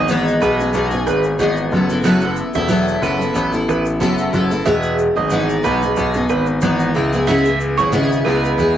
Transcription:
Already playing: G#1
0.08 E3 G#3 B3 D#4 G#4, shaker
0.28 shaker
0.41 B1 G#3 B3 D#4 G#4 B4, shaker
0.59 B3 D#4 G#4, shaker
0.73 B1 G#3 B3 D#4 G#4, shaker
0.91 B3 D#4 G#4, shaker
1.07 G#1 B4, shaker
1.24 shaker
1.39 G#1 E3 G#3 B3 D#4 G#4, shaker
1.57 shaker
1.71 F#1 F#3 B3 E4 A4, shaker
1.90 B3 E4 A4, shaker
2.04 F#3 B3 E4 A4 F#5, shaker
2.21 B3 E4 A4, shaker
2.36 shaker
2.54 E1 B3 E4 A4 E5, shaker
2.68 F#3 B3 E4 A4, shaker
2.88 shaker
3.02 F#1 F#3 B3 E4 A4 B4, shaker
3.19 B3 E4 A4, shaker
3.33 A1 F#3 B3 E4 A4, shaker
3.52 B3 E4 A4, shaker
3.68 A1 B4, shaker
3.86 shaker
4.00 F#1 F#3 B3 E4 A4, shaker
4.18 shaker
4.33 F#1 F#3 B3 E4 A4, shaker
4.51 B3 E4 A4, shaker
4.65 E1 E3 G#3 B3 G#4 E5, shaker
4.83 shaker
4.99 shaker
5.16 G#1 B3 D#4 G#4 D#5, shaker
5.30 E3 G#3 B3 D#4 G#4, shaker
5.49 shaker
5.63 B1 G#3 B3 D#4 G#4 B4, shaker
5.82 B3 D#4 G#4, shaker
5.96 B1 G#3 B3 D#4 G#4, shaker
6.14 B3 D#4 G#4, shaker
6.29 G#1 B4, shaker
6.47 shaker
6.62 G#1 E3 G#3 B3 D#4 G#4, shaker
6.80 shaker
6.95 C#2 G#3 B3 E4 G#4, shaker
7.13 B3 E4 G#4, shaker
7.27 C#3 G#3 B3 E4 G#4 E5, shaker
7.45 B3 E4 G#4, shaker
7.60 shaker
7.77 G#1 B3 E4 G#4 C#5, shaker
7.92 C#3 G#3 B3 E4 G#4, shaker
8.12 shaker
8.25 C#2 G#3 B3 E4 G#4 B4
8.45 shaker
8.57 E2 G#3 B3 E4 G#4, shaker

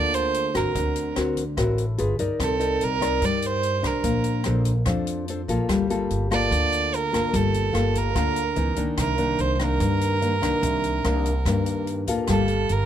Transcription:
Already playing: D2 D3 A#3 F4 A4 D5
0.14 C5, closed hi-hat
0.34 closed hi-hat
0.54 G1 C4 F#4 A#4, kick, cross-stick, closed hi-hat
0.75 D2 D3, kick, closed hi-hat
0.96 closed hi-hat
1.16 D2 C4 F#4 A#4, cross-stick, closed hi-hat
1.37 kick, closed hi-hat
1.57 A1 A2 C4 F#4 A#4, kick, cross-stick, closed hi-hat
1.78 closed hi-hat
1.98 G1 F4 G#4 B4, closed hi-hat
2.19 G1 D#4 A#4 D5, kick, closed hi-hat
2.39 C2 C4 A4, kick, cross-stick, closed hi-hat
2.60 D#4 A#4 D5, closed hi-hat
2.81 C2 A#4, closed hi-hat
3.01 D#4 A#4 D5, kick, cross-stick, closed hi-hat
3.22 G2 G3 D5, kick, closed hi-hat
3.37 D5
3.42 C5, closed hi-hat
3.63 closed hi-hat
3.82 C2 D4 C5, kick, cross-stick, closed hi-hat
3.87 A#4
4.03 A#1 A#3, kick, closed hi-hat
4.24 closed hi-hat
4.44 A#1 D4 A4 C5, cross-stick, closed hi-hat
4.65 kick, closed hi-hat
4.86 F2 F3 D4 A4 C5, kick, cross-stick, closed hi-hat
5.07 closed hi-hat
5.28 D4 A4 C5, closed hi-hat
5.48 A#1 A#3 F4 A4, kick, closed hi-hat
5.69 G1 G3, kick, cross-stick, closed hi-hat
5.90 A#3 F4 A4, closed hi-hat
6.10 G1, closed hi-hat
6.31 A#3 F4 A4 D5, kick, cross-stick, closed hi-hat
6.51 D2 D3, kick, closed hi-hat
6.72 closed hi-hat
6.93 A#4, closed hi-hat
7.12 G1 A#3 F4 A4, kick, cross-stick, closed hi-hat
7.33 G1 G3 A4, kick, closed hi-hat
7.54 closed hi-hat
7.73 G1 A#3 F4 A4, cross-stick, closed hi-hat
7.95 A#4, kick, closed hi-hat
8.15 D2 D3 A#3 F4 A4, kick, cross-stick, closed hi-hat
8.36 closed hi-hat
8.56 C#2 E3 B3 D#4, closed hi-hat
8.76 C#2 D#3 A#3 D4, kick, closed hi-hat
8.97 C2 C3 A#4, kick, cross-stick, closed hi-hat
9.18 D#3 A#3 D4, closed hi-hat
9.38 C2 C5, closed hi-hat
9.55 C5
9.59 D#3 A#3 D4 A#4, kick, cross-stick, closed hi-hat
9.80 G2, kick, closed hi-hat
10.01 closed hi-hat
10.21 D#3 A#3 D4, closed hi-hat
10.41 C2 D#3 A#3 D4, kick, cross-stick, closed hi-hat
10.62 C2 C3, kick, closed hi-hat
10.84 closed hi-hat
11.04 C2 D#3 A#3 D4, cross-stick, closed hi-hat
11.25 kick, closed hi-hat
11.45 G2 D#3 A#3 D4, kick, cross-stick, closed hi-hat
11.66 closed hi-hat
11.87 closed hi-hat
12.07 A1 A#3 F4 A4, kick, closed hi-hat
12.24 G1 G3 G4, kick, cross-stick, closed hi-hat
12.29 A4 F5 A5
12.48 closed hi-hat
12.69 G1 A#4, closed hi-hat

